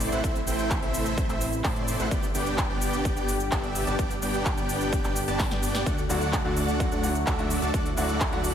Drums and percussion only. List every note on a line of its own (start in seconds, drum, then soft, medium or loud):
0.00 open hi-hat loud
0.00 cabasa medium
0.12 closed hi-hat medium
0.12 cabasa soft
0.24 kick loud
0.24 closed hi-hat medium
0.24 cabasa soft
0.36 closed hi-hat soft
0.36 cabasa soft
0.47 open hi-hat loud
0.47 cabasa medium
0.59 closed hi-hat soft
0.59 cabasa soft
0.70 kick loud
0.70 clap loud
0.70 closed hi-hat medium
0.70 cabasa soft
0.82 closed hi-hat soft
0.94 open hi-hat loud
0.94 cabasa medium
1.06 closed hi-hat medium
1.06 cabasa soft
1.18 kick loud
1.18 closed hi-hat medium
1.18 cabasa soft
1.29 clap soft
1.29 closed hi-hat soft
1.29 cabasa soft
1.41 open hi-hat loud
1.41 cabasa medium
1.53 closed hi-hat medium
1.53 cabasa soft
1.64 kick loud
1.64 clap loud
1.64 open hi-hat medium
1.64 cabasa soft
1.76 closed hi-hat soft
1.88 open hi-hat loud
1.88 cabasa medium
2.00 closed hi-hat medium
2.00 cabasa soft
2.11 kick loud
2.11 closed hi-hat medium
2.11 cabasa soft
2.23 cabasa soft
2.35 open hi-hat loud
2.35 cabasa medium
2.46 closed hi-hat medium
2.46 cabasa soft
2.58 kick loud
2.58 clap loud
2.58 closed hi-hat medium
2.58 cabasa soft
2.82 open hi-hat loud
2.82 cabasa medium
2.93 closed hi-hat medium
2.93 cabasa soft
3.05 kick loud
3.05 closed hi-hat medium
3.05 cabasa soft
3.17 cabasa soft
3.28 open hi-hat loud
3.28 cabasa medium
3.40 closed hi-hat medium
3.40 cabasa soft
3.52 kick loud
3.52 clap loud
3.52 closed hi-hat medium
3.52 cabasa soft
3.64 closed hi-hat soft
3.75 open hi-hat loud
3.75 cabasa medium
3.87 closed hi-hat medium
3.87 cabasa soft
3.99 kick loud
3.99 closed hi-hat medium
3.99 cabasa soft
4.11 closed hi-hat soft
4.11 cabasa soft
4.22 open hi-hat loud
4.22 cabasa medium
4.34 closed hi-hat medium
4.34 cabasa soft
4.45 kick loud
4.45 clap loud
4.45 closed hi-hat medium
4.45 cabasa soft
4.57 closed hi-hat soft
4.57 cabasa soft
4.69 open hi-hat loud
4.69 cabasa medium
4.81 closed hi-hat medium
4.81 cabasa soft
4.93 kick loud
4.93 closed hi-hat medium
4.93 cabasa soft
5.04 clap soft
5.04 closed hi-hat soft
5.04 cabasa soft
5.16 open hi-hat loud
5.16 cabasa medium
5.28 closed hi-hat medium
5.28 cabasa soft
5.39 kick loud
5.39 snare medium
5.39 clap loud
5.39 open hi-hat medium
5.39 cabasa soft
5.51 snare medium
5.51 closed hi-hat soft
5.51 cabasa soft
5.63 open hi-hat loud
5.63 cabasa medium
5.75 snare medium
5.75 closed hi-hat medium
5.75 cabasa soft
5.86 kick loud
5.86 closed hi-hat medium
5.86 cabasa soft
5.98 cabasa soft
6.10 open hi-hat loud
6.10 cabasa medium
6.22 closed hi-hat medium
6.22 cabasa soft
6.33 kick loud
6.33 clap loud
6.33 closed hi-hat medium
6.33 cabasa soft
6.57 open hi-hat loud
6.57 cabasa medium
6.68 closed hi-hat medium
6.68 cabasa soft
6.80 kick loud
6.80 closed hi-hat medium
6.80 cabasa soft
6.92 cabasa soft
7.04 open hi-hat loud
7.04 cabasa medium
7.15 closed hi-hat medium
7.15 cabasa soft
7.27 kick loud
7.27 clap loud
7.27 closed hi-hat medium
7.27 cabasa soft
7.39 closed hi-hat soft
7.51 open hi-hat loud
7.51 cabasa medium
7.62 closed hi-hat medium
7.62 cabasa soft
7.74 kick loud
7.74 closed hi-hat medium
7.74 cabasa soft
7.86 closed hi-hat soft
7.86 cabasa soft
7.97 open hi-hat loud
7.97 cabasa medium
8.09 closed hi-hat medium
8.09 cabasa soft
8.21 kick loud
8.21 clap loud
8.21 closed hi-hat medium
8.21 cabasa soft
8.32 closed hi-hat soft
8.44 open hi-hat loud
8.44 cabasa medium